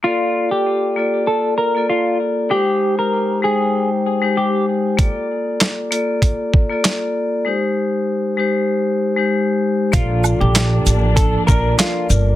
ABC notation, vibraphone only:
X:1
M:4/4
L:1/16
Q:"Swing 16ths" 1/4=97
K:Bb
V:1 name="Vibraphone"
[B,FAd]4 z2 [B,FAd]3 z2 [B,FAd]3 z2 | [_A,EGc]4 z2 [A,Ecg]3 z2 [A,EGc]3 z2 | [B,FAd]4 z2 [B,FAd]3 z2 [B,FAd]3 z2 | [_A,EGc]4 z2 [A,EGc]3 z2 [A,EGc]3 z2 |
[B,FAd]4- [B,FAd] z4 z [B,FBd]4 z2 |]